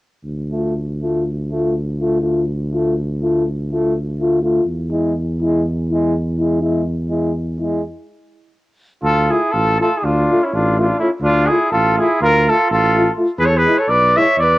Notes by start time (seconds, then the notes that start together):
0.24 D2
0.52 A3 F4
1.02 A3 F4
1.51 A3 F4
2.00 A3 F4
2.21 A3 F4
2.72 A3 F4
3.22 A3 F4
3.72 A3 F4
4.19 A3 F4
4.42 A3 F4
4.64 E2
4.91 G#3 E4
5.41 G#3 E4
5.91 G#3 E4
6.39 G#3 E4
6.61 G#3 E4
7.09 G#3 E4
7.59 G#3 E4
9.02 D2 F4 A4
9.29 A3 E4 F4 G#4
9.51 A1 F4 A4
9.80 A3 F4 A4
9.97 E4 G#4
10.03 D2 D4 F4
10.31 A3 F4
10.43 C#4 E4
10.54 A1 D4 F4
10.78 A3 D4 F4
10.99 A3 C#4 E4 F4
11.21 D2 D4 F4
11.46 A3 E4 F4 G#4
11.71 A1 F4 A4
11.97 A3 E4 F4 G#4
12.21 D2 F4 A#4
12.47 A3 F4 A4
12.70 A1 F4 A4
12.94 A3 F4
13.16 A3 F4
13.38 E2 G#4 B4
13.45 A4 C#5
13.57 G#4 B4
13.66 G#3 E4
13.78 A4 C#5
13.88 B1 B4 D5
14.16 G#3 E4 C#5 E5
14.38 E2 D5
14.42 B4